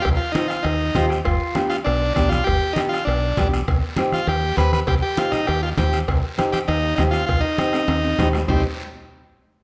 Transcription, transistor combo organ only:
X:1
M:4/4
L:1/16
Q:1/4=199
K:Cm
V:1 name="Transistor combo organ"
G2 F2 E2 F2 E6 z2 | z6 F2 D4 D2 F2 | G4 E2 F2 D6 z2 | z6 F2 G4 =B2 B2 |
G2 G2 F2 E2 G2 F2 G3 z | z6 G2 E4 E2 F2 | F2 E12 z2 | C2 z12 z2 |]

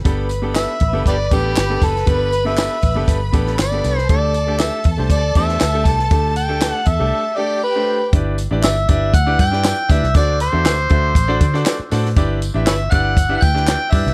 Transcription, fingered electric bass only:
X:1
M:4/4
L:1/16
Q:1/4=119
K:G
V:1 name="Fingered electric bass" clef=bass
G,,,4- G,,, z A,,, F,,, G,,,2 A,,,2 G,,,2 F,,,2 | G,,,4- G,,, z A,,, F,,, G,,,2 A,,,2 G,,,2 C,,2 | D,,4- D,, z E,, C,, D,,2 E,,2 D,,2 C,,2 | D,,4- D,, z E,, C,, z8 |
G,,,3 A,,, G,,,2 G,,,2 D,,2 G,,3 z D,, C,, | D,,3 E,, D,,2 D,,2 A,,,2 D,2 z2 A,,2 | G,,,3 A,,, z2 G,,,4 D,,3 z G,, C,, |]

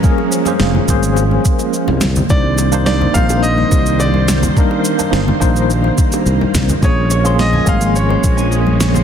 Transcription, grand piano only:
X:1
M:4/4
L:1/16
Q:1/4=106
K:Bbdor
V:1 name="Grand piano"
z16 | =d4 d2 f2 e4 d3 z | z16 | d4 e2 f2 d6 z2 |]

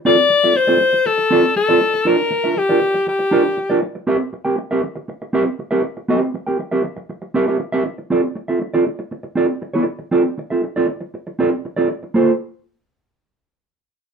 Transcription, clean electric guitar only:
X:1
M:4/4
L:1/16
Q:1/4=119
K:Cmix
V:1 name="Clean electric guitar"
[CFAd] z2 [CFAe] z [CFAd] z4 [CFAd] z2 [CFAd] z2 | [DFBd] z2 [DFBe] z [DFBd] z4 [DFBd] z2 [DFBd] z2 | [CGBe] z2 [CGBg] z [CGBe] z4 [CGBe] z2 [CGBe] z2 | [CGBe]2 z [CGBg] z [CGBe] z4 [CGBe] [CGBe] z [CGBe] z2 |
[CFAd] z2 [CFAe] z [CFAd] z4 [CFAd] z2 [CFAd]2 z | [CFAd] z2 [CFAe] z [CFAd] z4 [CFAd] z2 [CFAd] z2 | [B,FAc] z12 z3 |]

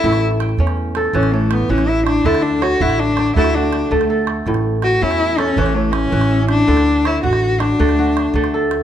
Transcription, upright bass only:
X:1
M:12/8
L:1/8
Q:3/8=108
K:D
V:1 name="Upright bass" clef=bass
A,,,3 E,,3 A,,,3 A,,,3 | D,,3 A,,,3 D,,3 D,,3 | A,,,3 E,,3 A,,,3 A,,,3 | D,,3 A,,,3 D,,3 D,,3 |]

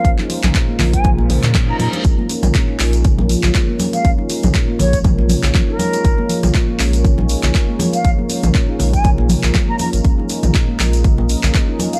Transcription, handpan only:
X:1
M:4/4
L:1/16
Q:"Swing 16ths" 1/4=120
K:Bbm
V:1 name="Handpan"
D E z3 B, F, z2 B, D z D E z2 | z B, D z D E z3 B, F, z2 B, D z | D E z3 B, F, z2 B, D z D E z2 | z B, F, z2 B, D z D E z3 B, F, z |
z B, D z D E z3 B, F, z2 B, D z | D E z3 B, F, z2 B, D z D E z2 |]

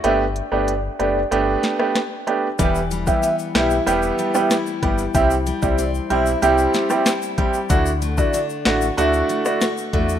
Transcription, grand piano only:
X:1
M:4/4
L:1/16
Q:1/4=94
K:Em
V:1 name="Grand piano"
[A,B,DG] z2 [A,B,DG] z2 [A,B,DG] z [A,B,DG]3 [A,B,DG] z2 [A,B,DG] z | [G,B,EG] z2 [G,B,EG] z2 [G,B,EG] z [G,B,EG]3 [G,B,EG] z2 [G,B,EG] z | [G,CEG] z2 [G,CEG] z2 [G,CEG] z [G,CEG]3 [G,CEG] z2 [G,CEG] z | [A,DEF] z2 [A,DEF] z2 [A,DEF] z [A,DEF]3 [A,DEF] z2 [A,DEF] z |]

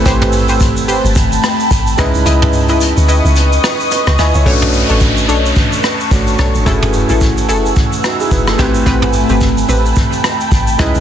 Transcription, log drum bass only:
X:1
M:4/4
L:1/16
Q:"Swing 16ths" 1/4=109
K:A
V:1 name="Log drum bass" clef=bass
A,,,4- A,,, =G,,,2 G,,,3 z2 A,,,2 C,, C,, | C,,4- C,, D,,2 C,,3 z3 C,, D,, C,, | B,,,3 A,,,3 B,,,2 z4 A,,,2 B,,, A,,, | F,,,3 A,,,3 F,,,2 z4 F,,,2 A,,,2 |
A,,,3 =G,,,3 A,,,2 z4 A,,,2 C,, B,,, |]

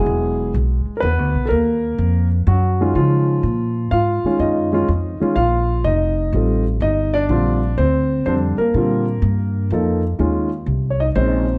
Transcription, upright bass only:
X:1
M:3/4
L:1/8
Q:"Swing" 1/4=124
K:Eblyd
V:1 name="Upright bass" clef=bass
=E,,,2 =B,,, z (3=E,, D,, B,,, | E,,2 F,,2 _G,,2 | _D,2 B,,2 _A,, z | _G,,2 F,, z B,,,2 |
F,,,2 A,,,2 G,,,2 | B,,,2 D,,2 F,, z | B,,2 G,,2 F,,2 | E,,2 C,,2 B,,,2 |]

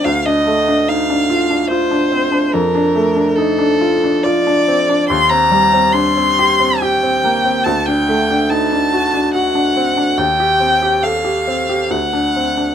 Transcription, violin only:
X:1
M:3/4
L:1/16
Q:1/4=71
K:Dphr
V:1 name="Violin"
f e3 f4 c4 | B4 A4 d4 | c' b3 c'4 g4 | a g3 a4 ^f4 |
g4 f4 ^f4 |]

